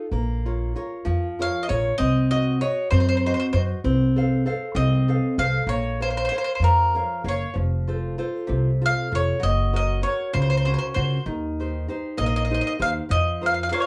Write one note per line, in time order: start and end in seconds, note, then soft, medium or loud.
0.12 0.73 A#1 medium
0.12 0.74 A#3 medium
0.45 0.74 F4 soft
0.45 0.75 A#4 soft
0.45 0.75 C#5 soft
0.76 1.27 F4 soft
0.76 1.27 A#4 soft
0.76 1.27 C#5 medium
1.05 1.47 F2 medium
1.05 1.67 F3 medium
1.39 1.67 F4 soft
1.39 1.67 A#4 soft
1.39 1.68 C#5 soft
1.39 1.62 F5 medium
1.63 1.69 D#5 medium
1.68 1.90 A#1 medium
1.68 1.93 F4 soft
1.68 1.93 A#4 soft
1.68 1.93 C#5 medium
1.68 1.97 C#5 medium
1.98 2.60 C2 medium
1.98 2.60 C4 medium
1.98 2.30 D#5 medium
2.31 2.60 F#4 soft
2.31 2.61 D#5 medium
2.31 2.61 D#5 soft
2.61 3.12 F#4 soft
2.61 2.89 C#5 medium
2.61 3.12 D#5 medium
2.91 3.33 F#2 loud
2.91 3.53 C4 medium
2.91 2.99 C5 medium
3.00 3.07 C5 medium
3.09 3.16 C5 medium
3.17 3.24 C5 medium
3.26 3.54 F#4 medium
3.26 3.54 C5 soft
3.26 3.32 C5 medium
3.26 3.54 D#5 soft
3.34 3.38 C5 medium
3.40 3.46 C5 medium
3.53 3.73 F#2 medium
3.53 3.78 F#4 medium
3.53 3.61 C5 medium
3.53 3.79 C5 soft
3.53 3.79 D#5 medium
3.84 4.44 C2 medium
3.84 4.45 C4 medium
4.16 4.45 A4 soft
4.16 4.45 C5 soft
4.16 4.45 F5 medium
4.46 4.96 A4 soft
4.46 4.96 C5 soft
4.46 4.96 F5 medium
4.75 5.16 C2 loud
4.75 5.36 C4 medium
4.75 5.34 D#5 medium
5.08 5.37 A4 soft
5.08 5.37 C5 soft
5.08 5.37 F5 soft
5.38 5.57 C2 medium
5.38 5.62 A4 soft
5.38 5.62 C5 soft
5.38 5.62 F5 medium
5.38 5.66 F5 medium
5.67 6.27 A#1 medium
5.67 6.29 A#3 medium
5.67 6.00 C#5 medium
6.00 6.30 A#4 soft
6.00 6.08 C5 medium
6.00 6.30 C#5 soft
6.00 6.31 F5 soft
6.10 6.16 C5 soft
6.17 6.23 C5 medium
6.25 6.28 C5 medium
6.29 6.82 A#4 soft
6.29 6.36 C5 medium
6.29 6.82 C#5 soft
6.29 6.82 F5 medium
6.38 6.43 C5 medium
6.44 6.51 C5 medium
6.55 6.61 C5 medium
6.60 7.02 F2 medium
6.60 7.24 F3 medium
6.64 7.22 A#4 medium
6.95 7.23 A#4 soft
6.95 7.24 C#5 soft
6.95 7.24 F5 soft
7.24 7.44 F#1 medium
7.24 7.49 A#4 soft
7.24 7.49 C#5 soft
7.24 7.49 F5 medium
7.28 7.55 C#5 medium
7.54 8.17 F1 medium
7.54 8.17 F3 medium
7.88 8.17 F4 soft
7.88 8.17 A4 soft
7.88 8.17 C5 soft
8.18 8.70 F4 soft
8.18 8.70 A4 soft
8.18 8.70 C5 soft
8.47 8.91 C2 medium
8.47 9.10 C3 medium
8.82 9.10 F4 soft
8.82 9.10 A4 soft
8.86 9.12 F5 loud
9.12 9.32 F1 medium
9.12 9.36 F4 soft
9.12 9.36 A4 soft
9.12 9.41 C#5 medium
9.40 10.03 F#1 medium
9.40 10.02 F#3 medium
9.40 9.74 D#5 medium
9.73 10.01 F#4 soft
9.73 10.01 A#4 soft
9.73 10.01 C#5 soft
9.73 10.03 D#5 medium
10.02 10.53 F#4 soft
10.02 10.54 A#4 soft
10.02 10.54 C#5 medium
10.02 10.31 C#5 medium
10.33 10.75 C#2 medium
10.33 10.94 C#3 medium
10.33 10.41 C5 medium
10.42 10.49 C5 medium
10.50 10.56 C5 medium
10.57 10.64 C5 medium
10.65 11.14 C#4 soft
10.65 10.95 F#4 soft
10.65 10.95 A#4 soft
10.65 10.72 C5 medium
10.74 10.77 C5 medium
10.78 10.86 C5 medium
10.94 11.16 C#2 medium
10.94 11.20 F#4 soft
10.94 11.20 A#4 soft
10.94 11.23 C5 medium
11.26 11.86 D#2 medium
11.26 11.87 D#3 medium
11.60 11.87 D#4 soft
11.60 11.88 G4 soft
11.60 11.88 C5 soft
11.88 12.39 D#4 soft
11.88 12.39 G4 soft
11.88 12.39 C5 medium
12.17 12.59 A#1 medium
12.17 12.78 A#3 medium
12.17 12.25 D#5 medium
12.26 12.34 D#5 medium
12.36 12.43 D#5 medium
12.45 12.51 D#5 medium
12.51 12.78 D#4 soft
12.51 12.78 G4 soft
12.51 12.79 C5 soft
12.51 12.59 D#5 medium
12.61 12.66 D#5 medium
12.67 12.72 D#5 medium
12.79 12.99 D#2 medium
12.79 13.03 D#4 soft
12.79 13.03 G4 soft
12.79 13.03 C5 medium
12.79 12.90 F5 medium
13.09 13.70 F2 medium
13.09 13.70 F3 medium
13.09 13.45 D#5 medium
13.41 13.71 F4 soft
13.41 13.70 A#4 soft
13.41 13.71 C5 soft
13.46 13.51 F5 medium
13.54 13.59 F5 medium
13.63 13.67 F5 medium
13.69 13.86 F4 soft
13.69 13.86 A#4 soft
13.69 13.86 C5 medium
13.69 13.71 F5 medium
13.69 13.79 F5 medium
13.74 13.79 C#5 medium
13.80 13.86 C#5 medium
13.80 13.85 F5 medium